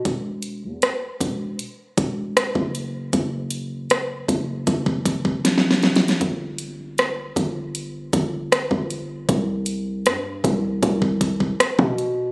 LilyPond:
<<
  \new Staff \with { instrumentName = "808-style bass" } { \clef bass \time 4/4 \key c \lydian \tempo 4 = 78 e,,8. e,16 r8 e,,8 r8 e,,8. fis,,8. | fis,,4. fis,,8 fis,,4 a,,8 fis,,8 | g,,4. g,,4 g,,8. g,,8. | c,4 g,8 c,8 c,4 r16 b,8. | }
  \new DrumStaff \with { instrumentName = "Drums" } \drummode { \time 4/4 <hh bd>8 hh8 <hh ss>8 <hh bd>8 hh8 <hh bd>8 <hh ss>16 bd16 hh8 | <hh bd>8 hh8 <hh ss>8 <hh bd>8 <hh bd>16 bd16 <hh bd>16 bd16 \tuplet 3/2 { <hh sn>16 sn16 sn16 <hh sn>16 <hh sn>16 <hh sn>16 } | <hh bd>8 hh8 <hh ss>8 <hh bd>8 hh8 <hh bd>8 <hh ss>16 bd16 hh8 | <hh bd>8 hh8 <hh ss>8 <hh bd>8 <hh bd>16 bd16 <hh bd>16 bd16 <hh ss>16 bd16 hh8 | }
>>